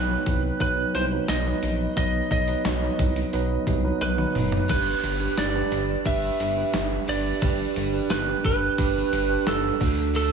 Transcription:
0.00 0.17 B1 medium
0.00 0.09 F#3 medium
0.00 0.09 B3 medium
0.00 0.10 D#4 medium
0.00 0.10 B4 loud
0.00 0.60 B4 medium
0.09 0.53 F#3 medium
0.09 0.54 B3 medium
0.09 0.54 D#4 medium
0.09 0.54 B4 medium
0.26 0.51 C2 medium
0.26 kick loud
0.26 closed hi-hat medium
0.60 0.85 B1 medium
0.60 1.04 F#3 medium
0.60 1.05 B3 medium
0.60 1.05 D#4 medium
0.60 1.05 B4 medium
0.60 0.95 B4 medium
0.60 kick medium
0.60 closed hi-hat medium
0.94 1.19 C2 loud
0.94 1.04 C5 medium
0.94 closed hi-hat medium
1.11 1.41 F#3 medium
1.11 1.41 B3 medium
1.11 1.41 D#4 medium
1.11 1.41 B4 medium
1.28 1.53 B1 loud
1.28 1.96 D#5 loud
1.28 snare loud
1.28 closed hi-hat medium
1.28 tambourine medium
1.45 1.90 F#3 medium
1.45 1.90 B3 medium
1.45 1.90 D#4 medium
1.45 1.90 B4 medium
1.63 1.87 A#1 medium
1.63 closed hi-hat medium
1.96 2.21 B1 loud
1.96 2.41 F#3 medium
1.96 2.41 B3 medium
1.96 2.41 D#4 medium
1.96 2.41 B4 medium
1.96 2.30 D#5 loud
1.96 kick loud
1.96 closed hi-hat medium
2.31 2.55 B1 loud
2.31 4.32 D#5 loud
2.31 kick medium
2.31 closed hi-hat medium
2.47 2.77 F#3 medium
2.47 2.77 B3 medium
2.47 2.78 D#4 medium
2.47 2.78 B4 medium
2.47 closed hi-hat soft
2.65 2.89 B1 loud
2.65 snare loud
2.65 closed hi-hat loud
2.65 tambourine medium
2.81 3.26 F#3 medium
2.81 3.26 B3 medium
2.81 3.26 D#4 medium
2.81 3.27 B4 medium
2.99 3.24 C2 medium
2.99 kick loud
2.99 closed hi-hat medium
3.16 closed hi-hat medium
3.32 3.58 B1 medium
3.32 3.77 F#3 medium
3.32 3.77 B3 medium
3.32 3.78 D#4 medium
3.32 3.78 B4 loud
3.32 closed hi-hat medium
3.67 3.92 C2 medium
3.67 kick medium
3.67 closed hi-hat medium
3.84 4.14 F#3 medium
3.84 4.14 B3 medium
3.84 4.14 D#4 medium
3.84 4.14 B4 loud
4.01 4.26 B1 loud
4.01 4.69 B4 medium
4.01 closed hi-hat medium
4.01 high tom medium
4.18 4.62 F#3 medium
4.18 4.63 B3 medium
4.18 4.63 D#4 medium
4.18 4.63 B4 loud
4.18 mid tom medium
4.35 4.60 F#1 medium
4.35 mid tom medium
4.35 open hi-hat medium
4.52 floor tom medium
4.68 4.94 G1 loud
4.68 6.04 G3 medium
4.68 6.06 D4 medium
4.68 5.14 G4 medium
4.68 5.14 B4 medium
4.68 5.40 B4 loud
4.68 kick loud
4.68 closed hi-hat medium
4.68 crash loud
4.73 6.07 G4 medium
5.03 5.28 G1 loud
5.03 closed hi-hat medium
5.20 5.50 D4 medium
5.20 5.50 G4 medium
5.20 5.50 B4 medium
5.37 5.62 G1 loud
5.37 6.06 D5 loud
5.37 snare loud
5.37 closed hi-hat medium
5.37 tambourine medium
5.54 5.99 D4 medium
5.54 5.99 G4 medium
5.54 5.99 B4 medium
5.72 5.96 G1 loud
5.72 closed hi-hat medium
6.05 6.30 G1 loud
6.05 7.08 G3 medium
6.05 6.50 D4 medium
6.05 7.10 D4 medium
6.05 6.50 G4 medium
6.05 7.06 G4 medium
6.05 6.51 B4 medium
6.05 7.09 E5 loud
6.05 kick loud
6.05 closed hi-hat medium
6.40 6.64 G1 loud
6.40 closed hi-hat medium
6.56 7.01 D4 medium
6.56 7.01 G4 medium
6.56 7.02 B4 medium
6.74 6.99 G1 loud
6.74 snare loud
6.74 closed hi-hat medium
6.74 tambourine medium
7.07 7.33 G1 loud
7.07 7.37 D4 medium
7.07 7.42 D4 soft
7.07 7.42 G4 medium
7.07 7.38 G4 medium
7.07 7.38 B4 medium
7.07 8.07 D5 loud
7.07 open hi-hat medium
7.41 7.67 G1 loud
7.41 8.77 G3 medium
7.41 7.86 D4 medium
7.41 8.79 D4 medium
7.41 7.87 G4 medium
7.41 7.87 B4 medium
7.41 kick loud
7.41 closed hi-hat medium
7.46 8.80 G4 medium
7.76 8.01 G1 loud
7.76 closed hi-hat medium
7.93 8.23 D4 medium
7.93 8.23 G4 medium
7.93 8.23 B4 medium
8.10 8.35 G1 loud
8.10 8.44 B4 medium
8.10 snare loud
8.10 closed hi-hat loud
8.10 tambourine medium
8.27 8.71 D4 medium
8.27 8.72 G4 medium
8.27 8.72 B4 medium
8.45 8.69 G1 loud
8.45 9.48 B4 loud
8.45 kick loud
8.45 closed hi-hat medium
8.78 9.03 G1 loud
8.78 9.80 G3 medium
8.78 9.23 D4 medium
8.78 9.80 D4 medium
8.78 9.23 G4 medium
8.78 9.82 G4 medium
8.78 9.23 B4 medium
8.78 kick loud
8.78 closed hi-hat medium
9.13 9.37 G1 loud
9.13 closed hi-hat medium
9.29 9.74 D4 medium
9.29 9.74 G4 medium
9.29 9.74 B4 medium
9.47 9.71 G1 medium
9.47 10.15 A4 medium
9.47 snare loud
9.47 closed hi-hat medium
9.47 tambourine medium
9.80 10.30 D2 loud
9.80 10.15 A3 soft
9.80 10.15 D4 medium
9.80 10.32 D4 medium
9.80 10.32 F#4 medium
9.80 10.32 A4 medium
9.80 kick loud
9.80 open hi-hat medium
10.14 10.32 D3 medium
10.14 10.32 A3 medium
10.14 10.32 A4 loud
10.14 closed hi-hat medium
10.19 10.32 D4 medium

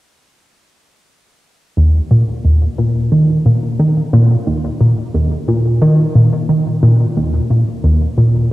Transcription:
1.77 2.00 D#2 medium
2.11 2.25 A#2 medium
2.45 2.67 D#2 medium
2.78 3.10 A#2 medium
3.12 3.44 D#3 medium
3.46 3.78 A#2 medium
3.79 4.02 D#3 medium
4.13 4.36 A#2 medium
4.47 4.70 D#2 medium
4.81 4.94 A#2 medium
5.14 5.37 D#2 medium
5.48 5.80 A#2 medium
5.82 6.14 D#3 medium
6.15 6.47 A#2 medium
6.49 6.72 D#3 medium
6.83 7.06 A#2 medium
7.17 7.39 D#2 medium
7.50 7.64 A#2 medium
7.84 8.07 D#2 medium
8.18 8.50 A#2 medium

